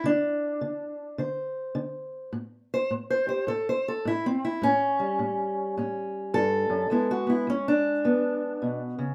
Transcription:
0.04 D3 D4
0.61 D3
1.18 D3 C5
1.75 D3
2.33 A2
2.74 C5
2.91 A2
3.10 C5
3.27 G4 C5
3.47 A2 A4
3.69 C5
3.88 A4
4.05 A2 E4
4.26 C4
4.45 E4
4.62 A2 C#4
5.00 G3
5.19 A2
5.77 A2 C#4
6.34 G2 A4
6.70 F#2
6.90 E2 G#3 B3 E4
7.11 F#4
7.27 B3 E4
7.47 E2 C#4
7.68 D4
8.05 E2 B3
8.62 B2
8.99 C#3

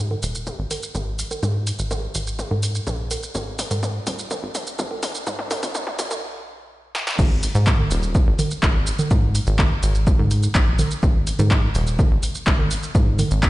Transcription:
Already playing: G#2
0.11 low conga
0.23 D#1, open hi-hat, shaker
0.35 shaker
0.47 mid tom, shaker
0.59 G#1
0.71 open hi-hat, low conga, shaker
0.83 shaker
0.95 G#1, mid tom, shaker
1.19 open hi-hat, shaker
1.31 low conga, shaker
1.43 G#2, mid tom, shaker
1.67 open hi-hat, shaker
1.79 G#1, shaker
1.91 mid tom, low conga, shaker
2.15 G#1, open hi-hat, shaker
2.27 shaker
2.39 mid tom, shaker
2.51 G#2, low conga
2.63 open hi-hat, shaker
2.75 shaker
2.87 A#1, mid tom, shaker
3.11 open hi-hat, low conga, shaker
3.23 shaker
3.35 G#1, mid tom, shaker
3.59 open hi-hat, mid tom, shaker
3.71 G#2, open hi-hat, low conga, shaker
3.83 mid tom, shaker
4.07 D#1, open hi-hat, mid tom, shaker
4.19 shaker
4.31 mid tom, low conga, shaker
4.43 G#1
4.55 open hi-hat, mid tom, shaker
4.67 shaker
4.79 G#1, mid tom, shaker
4.91 low conga
5.03 open hi-hat, mid tom, shaker
5.15 shaker
5.27 G#2, mid tom, shaker
5.39 mid tom
5.51 open hi-hat, mid tom, low conga, shaker
5.63 G#1, open hi-hat, mid tom, shaker
5.75 mid tom, shaker
5.87 mid tom
5.99 G#1, open hi-hat, mid tom, shaker
6.11 mid tom, low conga, shaker
6.95 snare
7.07 snare
7.19 G#1, kick, crash, low conga, shaker
7.43 open hi-hat, shaker
7.55 G#2, shaker
7.67 kick, clap, shaker
7.79 low conga
7.91 D#1, open hi-hat, shaker
8.03 shaker
8.15 kick, shaker
8.27 G#1
8.39 open hi-hat, low conga, shaker
8.51 shaker
8.63 G#1, kick, clap, shaker
8.87 open hi-hat, shaker
8.99 low conga, shaker
9.11 G#2, kick, shaker
9.35 open hi-hat, shaker
9.47 G#1, shaker
9.59 kick, clap, low conga, shaker
9.83 G#1, open hi-hat, shaker
9.95 shaker
10.07 kick, shaker
10.19 G#2, low conga
10.31 open hi-hat, shaker
10.43 shaker
10.55 A#1, kick, clap, shaker
10.79 open hi-hat, low conga, shaker
10.91 shaker
11.03 G#1, kick, shaker
11.27 open hi-hat, shaker
11.39 G#2, low conga, shaker
11.51 kick, clap, shaker
11.75 D#1, open hi-hat, shaker
11.87 shaker
11.99 kick, low conga, shaker
12.11 G#1
12.23 open hi-hat, shaker
12.35 shaker
12.47 G#1, kick, clap, shaker
12.59 low conga
12.71 open hi-hat, shaker
12.83 shaker
12.95 G#2, kick, shaker
13.19 open hi-hat, low conga, shaker
13.31 G#1, shaker
13.43 kick, clap, shaker

